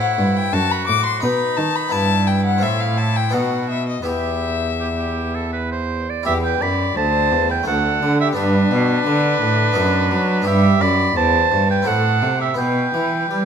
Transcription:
Already playing: A2 E4 F#4 C5
0.00 F#5
0.18 G2
0.36 G5
0.53 F#2 F#4 A5
0.71 B5
0.87 A2 D6
1.06 C6
1.21 B2 D#4 B4 B5
1.57 D#3 A5
1.76 B5
1.89 G2 B3 E4 B4 A5
1.93 G2
2.27 G5
2.46 F#5
2.58 A2 C4 F4 A4
2.62 A2 E5
2.81 F5
2.98 A5
3.16 G5
3.29 B2 B3 D#4 F#4 A4 F#5
3.34 B2
3.70 E5
3.89 D#5
4.02 E2 B3 E4 G4 E5
4.07 E2 G4
4.80 G4
4.98 G4
5.35 A4
5.53 B4
5.72 C5
6.10 D5
6.23 E2 E4 G4 E5
6.43 B4 G5
6.61 F#2 D5 B5
6.96 D2 C5 A5
7.32 E2
7.49 B4 G5
7.63 D2 A3 F#4
7.67 D2 A4 F#5
8.02 D3
8.20 G4 E5
8.33 G2 B3 D4 G4
8.37 G2 D4 B4
8.71 B2
9.06 D3
9.42 A2
9.72 B3 D#4 A4
9.76 F#2
10.11 F#3
10.42 G2 B3 E4 G4
10.46 G2 G4 E5
10.81 F#2 D5 B5
11.16 E2 C5 A5
11.51 G2
11.69 B4 G5
11.82 C4 E4 F#4 A4
11.87 A2 F#5
12.22 C3
12.40 G4 E5
12.54 B3 E4 B4 G5
12.58 B2
12.94 E3
13.31 G3

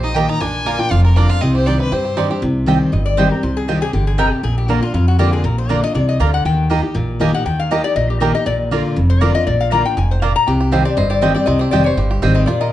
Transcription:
Already playing: A#1 A#2 G4 C5
0.03 D#4 D#5
0.14 D#3 A#3 D#4 G4 D#5 G5 A#5
0.29 D#4 A#5
0.40 A#1 A#2 D4 G#5
0.65 D3 A#3 D4 F4 A#4 D5 A#5
0.79 D4 F4 G5
0.91 F1 F2 F4 F5
1.04 A#4
1.16 D3 A#3 D4 F4 D5 A#5
1.29 D4 F4 F5
1.41 C2 C3 C4 D#5
1.55 G4 C5
1.66 D#3 G3 D4 D#4 G4 D5 C6
1.80 C4 B4
1.92 G2 G4 C5
2.05 G4
2.16 D#3 G3 C4 D4 D#4 G4 D5 C6
2.30 D4 G4
2.42 C2 C3
2.66 D#3 G3 C4 G4 D#5 G5
2.92 G1 G2 D#5
3.06 D5
3.17 D#3 G3 C4 G4 C5 D#5 G5
3.31 C4 G4 A#4
3.43 C2 C3 C5
3.57 G#4
3.68 D#3 G3 C4 F4 G4 D#5 G5
3.81 C4 G4 G#4
3.93 G1 D3 G4
4.07 G#4
4.18 C3 C4 G4 A#4 D#5 G5
4.32 G4
4.43 A#1 A#2 G#4
4.58 G4
4.68 D3 A#3 D4 F4 F#4 D5 A#5
4.81 D4 F4
4.94 F2 F4
5.08 F#4
5.19 D3 A#3 D4 F4 G4 D5 A#5
5.33 G#4
5.44 A#1 A#2 A#4
5.58 C5
5.69 D3 A#3 D4 F4 D5 A#5
5.83 D4 F4 D#5
5.94 C2 C3 D5
6.09 D#5
6.20 D2 D3 A#3 F4 D5 F5 A#5
6.34 F#5
6.45 D#2 D#3 G5
6.70 D#3 A#3 D#4 G4 D#5 A#5
6.83 D#4 G4
6.95 A#1 A#2
7.20 D#3 A#3 D#4 G4 D#5 G#5 A#5
7.33 D#4 G4 F#5
7.46 D#2 D#3 G5
7.60 F5
7.71 D#3 A#3 D#4 G4 D#5 A#5
7.84 D#4 G4 D5
7.96 A#1 A#2 D#5
8.10 G4
8.20 D#3 A#3 D#4 G4 A#4 D#5 A#5
8.34 D#4 G4 D#5
8.46 A#1 A#2 D5
8.71 D3 A#3 D4 F4 D5 A#5
8.96 F1 F2
9.10 C5
9.21 D3 A#3 D4 F4 D5 A#5
9.35 D4 F4 D#5
9.47 A#1 A#2 D5
9.61 F5
9.71 D3 A#3 D4 F4 D5 A#5
9.84 D4 F4 G5
9.97 F1 G#2 G#5
10.11 C5
10.22 A#2 A#3 F4 D5 F5 A#5
10.36 A#5
10.47 C2 C3 G4 G5
10.61 G4
10.71 D#3 G3 C4 G4 C5 D#5 F5 G5
10.85 C4 G4 D5
10.97 G1 G2 C5 D#5
11.10 G4 D5
11.21 D#3 G3 C4 G4 C5 D#5 G5
11.35 C4 G4 D5
11.46 C2 C3 C4 D#5
11.59 G4 C5
11.71 F1 D#3 G3 C4 G4 D5 D#5 G5
11.84 C4 G4 C5 C#5
11.96 G1 G2 G4 C5
12.11 G4
12.22 G#1 D#3 G3 C4 G4 C5 D#5 G5
12.35 C4 D#5
12.46 A#2 F4 D5
12.61 A#4 D#5

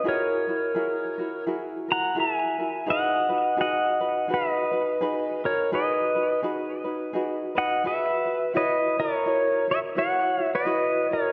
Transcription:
0.04 E4 F#4 G#4 A#4
0.08 A#4 C#5
0.47 E4 F#4 A#4
0.75 E4 F#4 G#4 A#4
1.18 E4 F#4 A#4
1.46 E4 F#4 G#4 A#4
1.88 E4 F#4 A#4 A#5
1.92 F#5
2.15 E4 F#4 G#4 A#4
2.19 E5 G#5
2.58 E4 F#4 A#4
2.86 D#4 F#4 G#4 B4 F#5
2.92 D#5
3.29 D#4 F#4 B4
3.57 D#4 F#4 G#4 B4 F#5
3.61 D#5
4.00 D#4 F#4 B4
4.28 D#4 F#4 G#4 B4
4.34 B4 D#5
4.71 D#4 F#4 B4
5.01 D#4 F#4 G#4 B4
5.44 D#4 F#4 A#4 C#5
5.72 D#4 F#4 G#4 B4 D#5
6.15 D#4 F#4 B4
6.43 D#4 F#4 G#4 B4
6.84 D#4 F#4 B4
7.13 D#4 F#4 G#4 B4
7.55 D#4 F#4 B4 D#5 F#5
7.84 F#4 G#4 B4 E5
8.26 F#4 B4
8.54 E4 F#4 B4 C#5 D#5
8.97 E4 F#4 A#4 C#5
9.26 E4 F#4 C#5
9.68 E4 F#4 C#5 E5
9.72 C#5
9.95 E4 F#4 B4 C#5 F#5
10.37 E4 F#4 C#5
10.44 E5
10.55 B4 D#5
10.65 E4 F#4 B4 C#5
11.09 E4 F#4 C#5
11.13 A#4 C#5

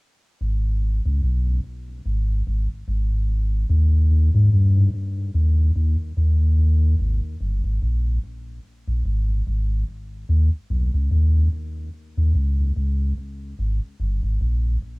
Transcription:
0.41 G#1
1.06 C#2
1.23 B1
2.06 G#1
2.47 G#1
2.88 G#1
3.70 D#2
4.34 G#2
4.53 G2
5.34 D#2
5.76 D#2
6.17 D#2
6.99 G#1
7.41 G1
7.64 G#1
7.82 A#1
8.88 A#1
9.05 G#1
9.47 G#1
10.29 D#2
10.70 B1
10.94 C#2
11.11 D#2
12.18 D#2
12.35 C#2
12.77 C#2
13.59 G#1
14.00 G1
14.23 G#1
14.41 A#1

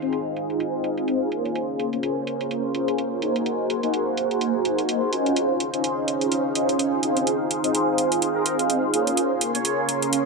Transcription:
Already playing: D#4 G#4 F5
0.01 C4 D#4 F4 G#4 C5, closed hi-hat
0.13 closed hi-hat
0.36 closed hi-hat
0.50 closed hi-hat
0.60 closed hi-hat
0.84 closed hi-hat
0.97 closed hi-hat
1.08 closed hi-hat
1.30 A#3 C#4 G#4 C5, closed hi-hat
1.45 closed hi-hat
1.55 C#4 A#4 C5 G#5, closed hi-hat
1.79 closed hi-hat
1.92 A#3 C#4 F4 G#4 C5, closed hi-hat
2.03 closed hi-hat
2.27 closed hi-hat
2.41 closed hi-hat
2.51 closed hi-hat
2.74 A#3 C#4 F4 G#4 C5, closed hi-hat
2.88 closed hi-hat
2.98 closed hi-hat
3.21 A#3 D#4 F#4 G#4 C5, closed hi-hat
3.36 closed hi-hat
3.46 closed hi-hat
3.70 closed hi-hat
3.82 A#3 D#4 F#4 G#4 C5, closed hi-hat
3.94 closed hi-hat
4.17 closed hi-hat
4.31 closed hi-hat
4.41 closed hi-hat
4.65 closed hi-hat
4.78 closed hi-hat
4.89 closed hi-hat
5.12 C#4 D#4 F4 G#4 C5, closed hi-hat
5.26 closed hi-hat
5.36 C#4 D#4 F5, closed hi-hat
5.60 closed hi-hat
5.72 C#4 D#4 F4 G#4 C5, closed hi-hat
5.84 closed hi-hat
6.08 closed hi-hat
6.21 closed hi-hat
6.32 closed hi-hat
6.55 C#4 D#4 F4 G#4 C5, closed hi-hat
6.69 closed hi-hat
6.79 closed hi-hat
7.02 C4 D#4 F4 G#4 C5, closed hi-hat
7.17 closed hi-hat
7.26 G#4, closed hi-hat
7.51 closed hi-hat
7.63 C4 D#4 F4 G#4 C5, closed hi-hat
7.75 closed hi-hat
7.98 closed hi-hat
8.12 closed hi-hat
8.22 closed hi-hat
8.36 A#4
8.46 closed hi-hat
8.59 closed hi-hat
8.70 closed hi-hat
8.93 A#3 C#4 F4 G#4 C5, closed hi-hat
9.07 closed hi-hat
9.17 C#4 A#4 G#5 C6, closed hi-hat
9.41 closed hi-hat
9.54 A#3 C#4 F4 G#4 C#5, closed hi-hat
9.65 closed hi-hat
9.89 closed hi-hat
10.02 closed hi-hat
10.13 closed hi-hat

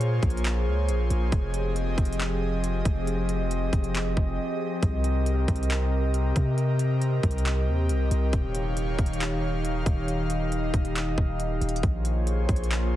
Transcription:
Already playing: A#2 A#3 F4 G#4 C5 C#5
0.01 closed hi-hat
0.23 A#1, kick, closed hi-hat
0.30 closed hi-hat
0.37 closed hi-hat
0.45 clap, closed hi-hat
0.67 C#2
0.88 A#1, closed hi-hat
1.10 A#1, closed hi-hat
1.32 F1 F3 C4 G4 D#5, kick, closed hi-hat
1.54 closed hi-hat
1.76 closed hi-hat
1.98 F1, kick, closed hi-hat
2.05 closed hi-hat
2.13 closed hi-hat
2.20 clap, closed hi-hat
2.64 closed hi-hat
2.85 F1, kick, closed hi-hat
3.07 closed hi-hat
3.29 closed hi-hat
3.51 closed hi-hat
3.73 F1, kick, closed hi-hat
3.84 closed hi-hat
3.95 clap, closed hi-hat
4.17 F1, kick
4.83 C2 C3 A#4, kick, closed hi-hat
5.04 closed hi-hat
5.26 closed hi-hat
5.48 C2, kick, closed hi-hat
5.56 closed hi-hat
5.63 closed hi-hat
5.70 clap, closed hi-hat
6.14 closed hi-hat
6.36 C3, kick, closed hi-hat
6.58 closed hi-hat
6.79 closed hi-hat
7.02 closed hi-hat
7.23 C2, kick, closed hi-hat
7.31 closed hi-hat
7.38 closed hi-hat
7.45 clap, closed hi-hat
7.67 D#2
7.89 C2, closed hi-hat
8.11 C2, closed hi-hat
8.33 D#1 D#3 D#4 C#5 F5, kick, closed hi-hat
8.55 closed hi-hat
8.77 closed hi-hat
8.99 D#1, kick, closed hi-hat
9.06 closed hi-hat
9.13 closed hi-hat
9.21 clap, closed hi-hat
9.65 closed hi-hat
9.86 D#1, kick, closed hi-hat
10.08 D#5, closed hi-hat
10.30 closed hi-hat
10.52 closed hi-hat
10.74 D#1, kick, closed hi-hat
10.85 closed hi-hat
10.96 clap, closed hi-hat
11.18 D#1, kick
11.40 closed hi-hat
11.61 D#1, closed hi-hat
11.69 closed hi-hat
11.76 closed hi-hat
11.83 A#1 A#3 F4 G#4 C5 C#5, kick, closed hi-hat
12.05 closed hi-hat
12.27 closed hi-hat
12.49 A#1, kick, closed hi-hat
12.56 closed hi-hat
12.64 closed hi-hat
12.71 clap, closed hi-hat

